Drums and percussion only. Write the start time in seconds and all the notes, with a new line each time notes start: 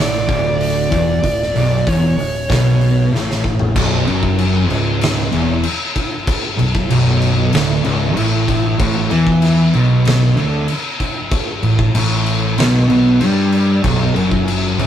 0.29 kick, open hi-hat
0.61 open hi-hat
0.92 kick, open hi-hat
1.24 kick, open hi-hat
1.42 snare
1.56 open hi-hat
1.87 kick, open hi-hat
2.19 open hi-hat
2.50 kick, snare, open hi-hat
2.81 open hi-hat
3.15 snare
3.31 snare
3.44 kick
3.59 floor tom
3.76 kick, crash
4.07 crash
4.23 kick
4.39 crash
4.70 crash
5.01 snare, crash
5.32 crash
5.63 crash
5.96 kick, crash
6.27 kick, crash
6.59 crash
6.75 kick
6.90 crash
7.22 crash
7.53 snare, crash
7.85 crash
8.17 crash
8.48 kick, crash
8.80 kick, crash
9.11 crash
9.27 kick
9.42 snare, crash
9.73 crash
10.05 snare, crash
10.37 crash
10.68 crash
11.00 kick, crash
11.31 kick, crash
11.63 crash
11.79 kick
11.95 crash
12.26 crash
12.58 snare, crash
12.90 crash
13.21 crash
13.52 crash
13.84 kick, crash
14.16 crash
14.31 kick
14.48 crash
14.79 crash